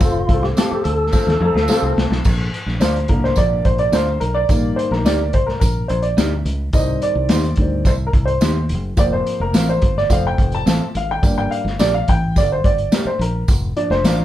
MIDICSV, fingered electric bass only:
0, 0, Header, 1, 3, 480
1, 0, Start_track
1, 0, Key_signature, -2, "major"
1, 0, Tempo, 561272
1, 9, Time_signature, 4, 2, 24, 8
1, 12186, End_track
2, 0, Start_track
2, 0, Title_t, "Fingered electric bass"
2, 0, Program_c, 0, 33
2, 4, Note_on_c, 0, 29, 103
2, 207, Note_off_c, 0, 29, 0
2, 245, Note_on_c, 0, 36, 92
2, 448, Note_off_c, 0, 36, 0
2, 728, Note_on_c, 0, 38, 87
2, 930, Note_off_c, 0, 38, 0
2, 1084, Note_on_c, 0, 39, 95
2, 1187, Note_off_c, 0, 39, 0
2, 1201, Note_on_c, 0, 41, 93
2, 1305, Note_off_c, 0, 41, 0
2, 1319, Note_on_c, 0, 38, 90
2, 1424, Note_off_c, 0, 38, 0
2, 1558, Note_on_c, 0, 36, 79
2, 1664, Note_off_c, 0, 36, 0
2, 1682, Note_on_c, 0, 36, 83
2, 1786, Note_off_c, 0, 36, 0
2, 1798, Note_on_c, 0, 35, 92
2, 1903, Note_off_c, 0, 35, 0
2, 1927, Note_on_c, 0, 34, 100
2, 2129, Note_off_c, 0, 34, 0
2, 2276, Note_on_c, 0, 34, 85
2, 2383, Note_off_c, 0, 34, 0
2, 2400, Note_on_c, 0, 38, 81
2, 2605, Note_off_c, 0, 38, 0
2, 2643, Note_on_c, 0, 36, 89
2, 2847, Note_off_c, 0, 36, 0
2, 2884, Note_on_c, 0, 34, 90
2, 3088, Note_off_c, 0, 34, 0
2, 3123, Note_on_c, 0, 34, 89
2, 3327, Note_off_c, 0, 34, 0
2, 3353, Note_on_c, 0, 38, 101
2, 3561, Note_off_c, 0, 38, 0
2, 3598, Note_on_c, 0, 35, 90
2, 3804, Note_off_c, 0, 35, 0
2, 3841, Note_on_c, 0, 34, 93
2, 4046, Note_off_c, 0, 34, 0
2, 4199, Note_on_c, 0, 34, 84
2, 4324, Note_off_c, 0, 34, 0
2, 4324, Note_on_c, 0, 38, 90
2, 4565, Note_off_c, 0, 38, 0
2, 4565, Note_on_c, 0, 36, 85
2, 4767, Note_off_c, 0, 36, 0
2, 4801, Note_on_c, 0, 34, 89
2, 5005, Note_off_c, 0, 34, 0
2, 5045, Note_on_c, 0, 34, 86
2, 5247, Note_off_c, 0, 34, 0
2, 5281, Note_on_c, 0, 38, 103
2, 5484, Note_off_c, 0, 38, 0
2, 5518, Note_on_c, 0, 37, 92
2, 5722, Note_off_c, 0, 37, 0
2, 5756, Note_on_c, 0, 36, 107
2, 5961, Note_off_c, 0, 36, 0
2, 6118, Note_on_c, 0, 36, 86
2, 6222, Note_off_c, 0, 36, 0
2, 6247, Note_on_c, 0, 39, 95
2, 6448, Note_off_c, 0, 39, 0
2, 6476, Note_on_c, 0, 38, 90
2, 6714, Note_on_c, 0, 36, 97
2, 6727, Note_off_c, 0, 38, 0
2, 6920, Note_off_c, 0, 36, 0
2, 6956, Note_on_c, 0, 36, 90
2, 7161, Note_off_c, 0, 36, 0
2, 7194, Note_on_c, 0, 39, 87
2, 7439, Note_on_c, 0, 30, 84
2, 7452, Note_off_c, 0, 39, 0
2, 7642, Note_off_c, 0, 30, 0
2, 7675, Note_on_c, 0, 29, 97
2, 7880, Note_off_c, 0, 29, 0
2, 8039, Note_on_c, 0, 29, 81
2, 8142, Note_off_c, 0, 29, 0
2, 8150, Note_on_c, 0, 33, 83
2, 8357, Note_off_c, 0, 33, 0
2, 8402, Note_on_c, 0, 31, 93
2, 8605, Note_off_c, 0, 31, 0
2, 8634, Note_on_c, 0, 29, 99
2, 8840, Note_off_c, 0, 29, 0
2, 8881, Note_on_c, 0, 29, 89
2, 9084, Note_off_c, 0, 29, 0
2, 9120, Note_on_c, 0, 33, 94
2, 9223, Note_off_c, 0, 33, 0
2, 9364, Note_on_c, 0, 32, 86
2, 9566, Note_off_c, 0, 32, 0
2, 9602, Note_on_c, 0, 31, 97
2, 9805, Note_off_c, 0, 31, 0
2, 9958, Note_on_c, 0, 31, 94
2, 10062, Note_off_c, 0, 31, 0
2, 10086, Note_on_c, 0, 34, 90
2, 10287, Note_off_c, 0, 34, 0
2, 10332, Note_on_c, 0, 33, 89
2, 10572, Note_on_c, 0, 31, 85
2, 10585, Note_off_c, 0, 33, 0
2, 10771, Note_off_c, 0, 31, 0
2, 10813, Note_on_c, 0, 31, 83
2, 11012, Note_off_c, 0, 31, 0
2, 11282, Note_on_c, 0, 34, 93
2, 11486, Note_off_c, 0, 34, 0
2, 11530, Note_on_c, 0, 29, 99
2, 11731, Note_off_c, 0, 29, 0
2, 11888, Note_on_c, 0, 29, 89
2, 11989, Note_off_c, 0, 29, 0
2, 12005, Note_on_c, 0, 33, 92
2, 12186, Note_off_c, 0, 33, 0
2, 12186, End_track
3, 0, Start_track
3, 0, Title_t, "Muted fingered electric bass strokes"
3, 609, Note_on_c, 9, 29, 48
3, 695, Note_off_c, 9, 29, 0
3, 11161, Note_on_c, 9, 29, 49
3, 11247, Note_off_c, 9, 29, 0
3, 12186, End_track
0, 0, End_of_file